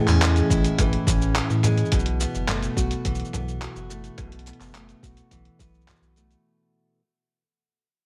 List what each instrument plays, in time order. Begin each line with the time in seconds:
Already playing: steel-string acoustic guitar A2 E3 G#3 E4, analog synth pad A2 E3 G#4
0.07 sub bass E2, steel-string acoustic guitar C#4, clap, cabasa
0.22 steel-string acoustic guitar G#3, clap, closed hi-hat, cabasa
0.36 closed hi-hat, cabasa
0.50 sub bass A1, steel-string acoustic guitar E4, kick, cabasa
0.64 closed hi-hat, cabasa
0.78 sub bass A1, steel-string acoustic guitar E3, kick, closed hi-hat, mid tom, cabasa
0.93 closed hi-hat
1.07 sub bass A1, steel-string acoustic guitar C#4, kick, cabasa
1.22 cabasa
1.35 clap, closed hi-hat, cabasa
1.50 sub bass A2, cabasa
1.63 steel-string acoustic guitar G#3, mid tom, cabasa
1.77 closed hi-hat, cabasa
1.85 cabasa
1.92 sub bass B1, steel-string acoustic guitar B2, analog synth pad B2, kick, closed hi-hat, cabasa
1.99 cabasa
2.06 closed hi-hat
2.20 analog synth pad F#3, steel-string acoustic guitar B3, cabasa
2.35 sub bass F#1, cabasa
2.45 steel-string acoustic guitar A3, analog synth pad E4, clap, closed hi-hat, mid tom
2.49 cabasa
2.62 closed hi-hat, cabasa
2.77 sub bass B1, steel-string acoustic guitar F#4, analog synth pad A4, kick, cabasa
2.91 closed hi-hat, cabasa
3.05 sub bass B1, steel-string acoustic guitar E3, kick, closed hi-hat, cabasa
3.15 cabasa
3.20 closed hi-hat
3.25 cabasa
3.33 sub bass B1, steel-string acoustic guitar B3, mid tom, cabasa
3.48 cabasa
3.62 steel-string acoustic guitar F#4, clap, closed hi-hat, cabasa
3.76 sub bass F#1, cabasa
3.89 steel-string acoustic guitar A3, cabasa
4.04 closed hi-hat, cabasa
4.18 sub bass B1, steel-string acoustic guitar B2, kick, closed hi-hat, mid tom, cabasa
4.32 closed hi-hat
4.39 closed hi-hat
4.46 steel-string acoustic guitar B3, closed hi-hat, cabasa
4.53 closed hi-hat
4.60 sub bass F#1, clap, closed hi-hat, cabasa
4.63 cabasa
4.66 cabasa
4.70 cabasa
4.73 steel-string acoustic guitar A3, clap, closed hi-hat, cabasa
4.75 cabasa
4.89 closed hi-hat, cabasa
5.03 sub bass B1, steel-string acoustic guitar F#4, kick, cabasa
5.17 closed hi-hat, cabasa
5.31 sub bass B1, steel-string acoustic guitar E3, kick, closed hi-hat, cabasa
5.45 closed hi-hat
5.59 sub bass B1, steel-string acoustic guitar B3, kick, cabasa
5.74 cabasa
5.81 cabasa
5.88 steel-string acoustic guitar F#4, clap, closed hi-hat, mid tom, cabasa
5.96 cabasa
6.01 sub bass B1, cabasa
6.16 steel-string acoustic guitar A3, closed hi-hat, cabasa
6.31 closed hi-hat, cabasa